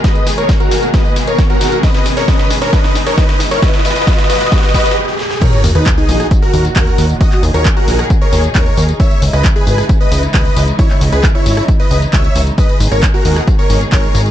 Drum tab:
CC |--------------------------------|--------------------------------|--------------------------------|x-------------------------------|
HH |x-x-o-x-x-x-o-x-x---o-x-x-x-o-x-|x-x-o-x-x-x-o-x-x---o-x-x-x-o-x-|x-x-o-x-x-x-o-x-x---o-x---------|x-x-o-x-x---o-x-x---o-x-x-x-o-x-|
TB |x-x-x-x-x-x-x-x-x-x-x-x-x-x-x-x-|x-x-x-x-x-x-x---x-x-x-x-x-x-x-x-|x-x-x-x-x-x-x-x-x-x-x-x---------|x-x-x-x-x-x-x-x-x-x-x-x-x-x-x-x-|
CP |--------------------------------|--------------------------------|--------------------------------|--------x---------------x-------|
SD |o---o---o---o---o---o---o---o---|o-o-o-o-o-o-o-o-o-o-o-o-o-o-o-o-|oooooooooooooooooooooooo--o-o-o-|------r-------r-----------------|
BD |o-------o-------o-------o-------|o-------o-------o-------o-------|o-------o-------o---o-----------|o-------o-------o-------o-------|

CC |--------------------------------|--------------------------------|--------------------------------|--------------------------------|
HH |x-x-o-x-x---o-x-x---o-x-x-x-o-x-|x-x-o-x-x---o-x-x---o-x-x-x-o-x-|x-x-o-x-x---o-x-x-x-o-x-x-x-o-x-|x-x-o-x-x---o-x-x---o-x-x-x-o-x-|
TB |x-x-x-x-x-x-x-x-x-x-x-x-x-x-x-x-|x-x-x-x-x-x-x-x-x-x-x-x-x-x-x-x-|x-x-x-x-x-x-x-x-x-x-x-x-x-x-x-x-|x-x-x-x-x-x-x-x-x-x-x-x-x-x-x-x-|
CP |--x-----x---------------x-------|--------x---------------x-------|--x-----x---------------x-------|--------x---------------x-------|
SD |--------------r-----------------|------r-------r-----------------|--------------r-----------------|------r-------r-----------------|
BD |o-------o-------o-------o-------|o-------o-------o-------o-------|o-------o-------o-------o-------|o-------o-------o-------o-------|